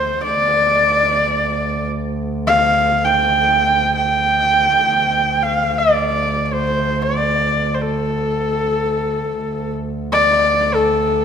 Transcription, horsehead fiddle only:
Already playing: C5
0.23 D5
2.47 F5
3.04 G5
3.95 G5
5.42 F5
5.78 D5
6.45 D5
6.53 C5
7.02 D5
7.74 C5
7.82 A4
10.12 D5
10.74 A4

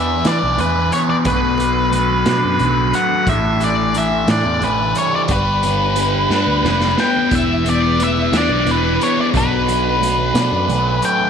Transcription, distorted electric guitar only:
Already playing: E3 B3
0.25 D4
0.59 E3
0.92 B3
1.25 B2
1.59 F#3
1.92 F#3
2.27 D4
2.60 F#3
2.94 A3
3.28 A2
3.61 E3
3.95 E3
4.29 D4
4.63 E3
4.95 G3
5.29 G3
5.63 B3
5.97 G3
6.31 D4
6.64 G3
6.98 B3
7.31 E3
7.65 B3
7.99 E3
8.33 D4
8.66 E3
9.00 B3
9.34 B2
9.68 F#3
10.00 F#3
10.35 D4
10.69 F#3
11.03 A3

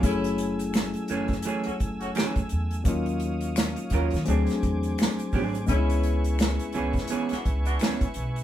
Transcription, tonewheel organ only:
0.03 A3 G#5 E6
2.85 C#5 F5 D#6
4.25 C5 G#5 D6
5.69 B4 E5 C#6

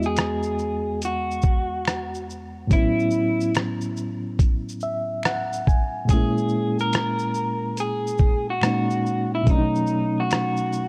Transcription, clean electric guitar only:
0.06 G#4
1.05 F#4
2.73 E4
6.10 G#4
6.81 A#4
7.80 G#4
8.50 F#4
9.35 E4
9.50 D#4
10.20 F#4

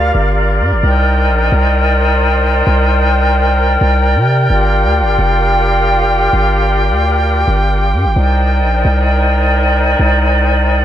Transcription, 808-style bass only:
Already playing: D2
0.15 G1
0.61 G2
0.72 G1
0.83 C2
1.29 A#1
1.52 C2
2.67 C2
3.81 C2
4.16 C3
4.50 G1
4.84 D2
5.01 G1
5.19 F1
6.33 G1
6.90 D2
7.48 G1
7.93 G2
8.05 G1
8.16 C2
8.62 A#1
8.85 C2
9.99 C2

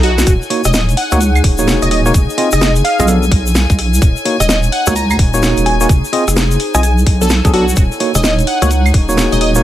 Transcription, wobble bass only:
Already playing: B1
0.27 D#1
0.65 D#1
1.12 C#2
1.44 D#1
1.82 D#1
2.14 F1
2.53 F1
2.99 B1
3.31 B1
3.70 B1
4.02 D#1
4.40 D#1
4.87 C#2
5.19 D#1
5.57 D#1
5.89 F1
6.28 F1
6.75 B1
7.07 B1
7.45 B1
7.77 D#1
8.15 D#1
8.62 C#2
8.94 D#1
9.32 D#1

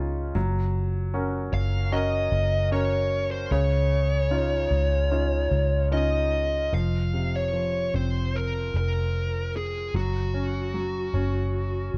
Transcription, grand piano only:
Already playing: C#3 C#4 D#4 F4
0.35 F#3
1.14 C#4 F#4 A#4
1.92 C#4 F#4 A#4
2.71 C#4 F#4 A#4
3.52 C#3
4.30 C#4 D#4 F4
5.11 C#4 D#4 F4
5.91 C#4 D#4 F4
6.73 F3
7.13 C3
7.53 F3
7.94 C4
9.94 F#3
10.34 C#4
10.74 F#3
11.14 C#4

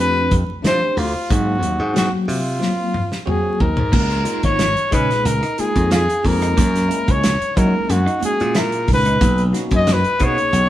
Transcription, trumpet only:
0.00 B4
0.66 C5
0.98 F4
1.31 F#4
1.97 F#4
2.28 F4
3.28 G#4
3.61 A#4
4.44 C#5
4.93 B4
5.25 A#4
5.60 G#4
5.93 G#4
6.26 A#4
7.11 C#5
7.57 A#4
7.90 F#4
8.24 G#4
8.58 A#4
8.93 B4
9.76 D#5
9.92 B4
10.24 C#5

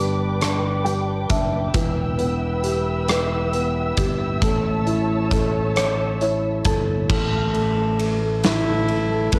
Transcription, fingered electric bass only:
Already playing: G1
1.30 F#1
1.74 E1
3.97 G1
4.42 A1
6.65 G1
7.09 A1
9.32 A1

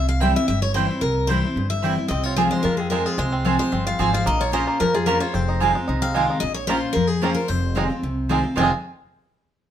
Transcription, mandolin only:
0.20 C4 E4 C5 G5
0.74 C4 E4 C5 G5
1.28 C4 E4 C5 G5
1.82 C4 E4 C5 G5
2.37 C4 F4 C5 G#5
2.91 C4 F4 C5 G#5
3.45 C4 F4 C5 G#5
3.99 C4 F4 C5 G#5
4.53 C#4 F4 C5 A#5
5.06 C#4 F4 C5 A#5
5.60 C4 F4 D#5 G#5
6.14 C4 F4 D#5 G#5
6.68 C#4 F4 C5 A#5
7.22 C#4 F4 C5 A#5
7.76 C4 F4 D#5 G#5
8.29 C4 F4 D#5 G#5
8.56 C4 F4 D#5 G#5

